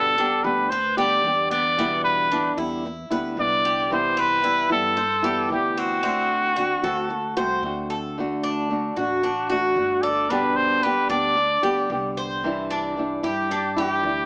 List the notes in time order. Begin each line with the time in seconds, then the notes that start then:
Already playing: G1 B2 D3 G3 B3 G4 A4
0.17 D3 G3 B3 D4 G4
0.44 D2 D3 G3 B3 G4 B4
0.70 B4 C5, muted nylon-string guitar stroke
0.97 D3 G3 B3 G4 D5
1.24 E2 D3 G3 B3 G4
1.51 B3 D5
1.77 B2 D3 G3 B3 E4
2.04 B4
2.30 D3 G3 B3 D4 E4
2.57 E2 D3 G3 B3 E4
2.85 muted nylon-string guitar stroke
3.10 D2 D3 G3 B3 E4 B4
3.37 C2 D3 G3 B3 E4 D5
3.65 G4
3.90 C3 E3 G3 B3 E4 C5
4.17 C4 B4
4.42 E3 G3 B3 E4
4.70 G2 E3 G3 B3 E4 A4
4.97 C5, muted nylon-string guitar stroke
5.23 E3 G3 B3 E4 G4
5.50 D2 E3 G3 B3 E4 G4
5.77 C4 F#4
6.03 D3 A3 C4 F#4
6.56 D3 A3 C4 F#4
6.83 D2 A3 C4 F#4 A4
7.10 muted nylon-string guitar stroke
7.37 C2 A3 C4 F#4 C5
7.63 D2 D3 A3 C4 F#4
7.90 A4
8.18 D3 A3 D4 F#4
8.43 D4
8.70 D3 A3 D4 F#4
8.96 A1 A3 D4 F#4
9.23 D4, muted nylon-string guitar stroke
9.50 A3 D4 F#4
9.76 G1 D3 A3 D4 F#4
10.03 A4 D5
10.30 B2 D3 G3 B3 D4 G4 B4
10.56 C5
10.83 D3 G3 B3 G4 B4
11.09 D2 D3 G3 B3 D4 G4 D5
11.37 muted nylon-string guitar stroke
11.63 D2 D3 G3 B3 G4
11.90 C2 D3 G3 B3 G4
12.17 C5
12.43 C3 E3 G3 D4 E4
12.71 D4
12.97 E3 G3 D4 E4
13.23 G2 E3 G3 D4 E4 G4
13.51 D4, muted nylon-string guitar stroke
13.76 E3 G3 D4 E4 G4
14.03 D2 E3 G3 D4 E4